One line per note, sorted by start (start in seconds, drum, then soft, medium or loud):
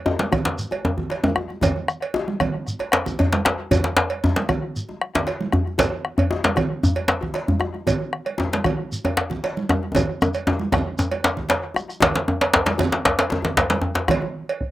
0.06 djembe slap medium
0.06 djembe tone medium
0.19 djembe slap medium
0.19 high conga soft
0.32 bombo rim medium
0.32 bombo low loud
0.32 cowbell soft
0.32 djembe bass medium
0.32 low conga medium
0.45 djembe slap medium
0.58 high conga soft
0.58 shekere medium
0.71 cowbell soft
0.71 djembe tone medium
0.71 high conga soft
0.85 djembe tone medium
0.97 bombo low medium
0.97 djembe bass medium
0.97 low conga medium
1.10 bombo rim soft
1.10 cowbell soft
1.10 djembe slap medium
1.23 djembe slap soft
1.23 djembe tone medium
1.23 high conga medium
1.36 bombo rim loud
1.36 djembe tone medium
1.49 djembe slap soft
1.49 high conga soft
1.61 bombo low loud
1.61 cowbell medium
1.61 djembe slap soft
1.61 djembe tone medium
1.61 djembe bass medium
1.61 low conga medium
1.61 shekere medium
1.76 high conga soft
1.88 bombo rim loud
1.88 shekere soft
2.01 bombo rim soft
2.01 cowbell soft
2.14 djembe slap medium
2.14 djembe tone medium
2.28 bombo rim soft
2.28 djembe slap soft
2.28 high conga medium
2.40 bombo rim medium
2.40 bombo low medium
2.40 cowbell soft
2.40 djembe slap soft
2.40 djembe bass medium
2.40 low conga medium
2.54 djembe slap soft
2.67 bombo rim soft
2.67 high conga soft
2.67 shekere medium
2.79 cowbell soft
2.79 djembe slap soft
2.79 djembe tone medium
2.92 bombo rim medium
2.92 djembe slap medium
2.92 djembe slap soft
3.06 bombo rim soft
3.06 bombo low medium
3.06 high conga soft
3.06 low conga medium
3.06 djembe bass medium
3.06 shekere soft
3.19 cowbell soft
3.19 djembe slap medium
3.19 djembe bass medium
3.32 djembe slap soft
3.32 djembe slap medium
3.32 high conga medium
3.45 bombo rim medium
3.45 djembe slap loud
3.45 djembe tone medium
3.71 bombo low medium
3.71 cowbell medium
3.71 djembe bass medium
3.71 low conga medium
3.71 shekere medium
3.84 djembe slap medium
3.84 djembe slap soft
3.97 bombo rim medium
3.97 djembe slap loud
4.10 cowbell soft
4.10 high conga soft
4.24 djembe slap medium
4.24 djembe tone medium
4.24 djembe bass medium
4.36 djembe slap medium
4.36 high conga medium
4.49 bombo rim medium
4.49 bombo low medium
4.49 cowbell soft
4.49 low conga medium
4.49 djembe bass medium
4.76 high conga soft
4.76 shekere medium
4.89 high conga soft
4.89 djembe tone medium
5.01 bombo rim medium
5.15 bombo low medium
5.15 djembe slap medium
5.15 low conga medium
5.15 djembe bass medium
5.27 bombo rim soft
5.27 cowbell soft
5.27 djembe slap medium
5.41 djembe slap soft
5.41 high conga medium
5.52 bombo rim medium
5.52 djembe tone medium
5.52 djembe bass medium
5.67 high conga soft
5.78 bombo low medium
5.78 cowbell medium
5.78 djembe slap loud
5.78 djembe bass medium
5.78 low conga medium
5.78 shekere medium
5.93 djembe slap soft
6.05 bombo rim medium
6.18 cowbell soft
6.18 high conga soft
6.18 djembe bass medium
6.31 djembe slap medium
6.31 djembe tone medium
6.44 djembe slap loud
6.44 high conga medium
6.56 bombo rim medium
6.56 bombo low medium
6.56 cowbell soft
6.56 djembe bass medium
6.56 low conga medium
6.83 high conga soft
6.83 djembe bass medium
6.83 shekere medium
6.95 cowbell soft
6.95 djembe tone medium
6.95 high conga soft
7.08 bombo rim medium
7.08 djembe slap loud
7.21 bombo low medium
7.21 djembe bass medium
7.21 low conga medium
7.34 bombo rim soft
7.34 cowbell soft
7.34 djembe slap medium
7.47 djembe slap soft
7.47 high conga medium
7.47 djembe bass medium
7.60 bombo rim medium
7.60 djembe tone medium
7.74 djembe slap soft
7.74 high conga soft
7.87 bombo low medium
7.87 cowbell medium
7.87 djembe bass medium
7.87 low conga medium
7.87 shekere medium
8.00 djembe slap soft
8.13 bombo rim medium
8.26 cowbell soft
8.26 high conga soft
8.38 djembe slap medium
8.38 djembe tone medium
8.40 djembe tone medium
8.53 djembe slap medium
8.53 high conga medium
8.64 bombo rim medium
8.64 bombo low medium
8.64 cowbell soft
8.64 djembe bass medium
8.64 low conga medium
8.91 high conga soft
8.91 shekere soft
9.04 cowbell soft
9.04 high conga soft
9.04 djembe tone medium
9.17 bombo rim medium
9.17 djembe slap medium
9.30 bombo low medium
9.30 djembe bass medium
9.30 low conga medium
9.44 bombo rim soft
9.44 cowbell soft
9.44 djembe slap medium
9.57 djembe slap soft
9.57 high conga medium
9.69 bombo rim medium
9.69 djembe tone loud
9.69 djembe tone medium
9.83 djembe slap soft
9.83 high conga soft
9.95 bombo rim soft
9.95 bombo low medium
9.95 cowbell medium
9.95 djembe tone medium
9.95 high conga soft
9.95 low conga medium
9.95 djembe bass medium
9.95 shekere medium
10.09 bombo rim soft
10.22 bombo rim medium
10.22 djembe tone loud
10.22 shekere soft
10.34 bombo rim soft
10.34 cowbell soft
10.34 djembe slap soft
10.34 high conga soft
10.34 shekere soft
10.47 djembe slap medium
10.47 djembe tone loud
10.47 djembe tone medium
10.59 bombo rim soft
10.59 high conga medium
10.72 bombo rim loud
10.72 bombo low loud
10.72 cowbell soft
10.72 djembe slap soft
10.72 djembe tone loud
10.72 djembe bass medium
10.72 low conga medium
10.98 djembe tone medium
10.98 shekere medium
11.11 bombo rim soft
11.11 cowbell medium
11.11 djembe slap soft
11.11 djembe tone medium
11.11 high conga soft
11.24 djembe slap medium
11.24 shekere soft
11.37 bombo low medium
11.37 djembe slap soft
11.37 high conga soft
11.37 djembe bass medium
11.37 low conga medium
11.49 cowbell medium
11.49 djembe slap medium
11.62 bombo rim soft
11.62 djembe slap soft
11.74 bombo rim loud
11.74 djembe slap soft
11.74 djembe tone medium
11.74 high conga soft
11.74 shekere soft
11.88 bombo rim soft
11.88 djembe slap soft
11.88 shekere soft
12.00 djembe slap medium
12.00 high conga soft
12.00 djembe bass medium
12.00 low conga medium
12.02 bombo rim loud
12.02 bombo low loud
12.02 cowbell medium
12.02 djembe slap loud
12.13 djembe slap soft
12.13 high conga soft
12.16 djembe slap medium
12.28 djembe tone medium
12.41 cowbell medium
12.41 djembe slap medium
12.54 bombo low medium
12.54 djembe slap loud
12.66 djembe slap medium
12.66 high conga medium
12.78 cowbell medium
12.78 djembe tone medium
12.78 djembe bass medium
12.78 low conga medium
12.92 djembe slap medium
13.05 bombo rim loud
13.05 bombo low loud
13.05 djembe slap loud
13.05 high conga soft
13.19 cowbell medium
13.19 djembe slap medium
13.30 djembe slap medium
13.30 djembe tone medium
13.42 djembe slap medium
13.42 djembe bass medium
13.42 low conga medium
13.57 bombo low loud
13.57 cowbell medium
13.57 djembe slap loud
13.57 high conga soft
13.70 bombo rim soft
13.70 djembe slap medium
13.70 high conga medium
13.81 bombo rim soft
13.81 djembe slap soft
13.81 djembe tone medium
13.95 djembe slap medium
13.95 djembe tone medium
14.08 bombo rim loud
14.08 bombo low loud
14.08 cowbell medium
14.08 djembe slap medium
14.08 high conga soft
14.08 djembe bass medium
14.08 low conga medium
14.21 djembe slap soft
14.21 high conga soft
14.49 cowbell medium
14.61 bombo low loud